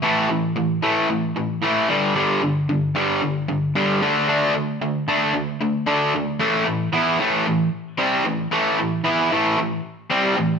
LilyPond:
\new Staff \with { instrumentName = "Overdriven electric guitar" } { \clef bass \time 4/4 \key a \minor \tempo 4 = 113 <a, e a>8 <a, e>8 <a, e>8 <a, e a>8 <a, e>8 <a, e>8 <a, e a>8 <g, d g>8 | <g, d g>8 <g, d>8 <g, d>8 <g, d g>8 <g, d>8 <g, d>8 <g, d g>8 <d a d'>8 | <d a d'>8 <d a>8 <d a>8 <d a d'>8 <d a>8 <d a>8 <d a d'>8 <d a>8 | <a, e a>8 <a, e>8 <e b e'>8 <a, e a>8 <a, e>8 r8 <c g c'>8 <a, e>8 |
<a, e a>8 <a, e>8 <e b e'>8 <a, e a>8 <a, e>8 r8 <c g c'>8 <a, e>8 | }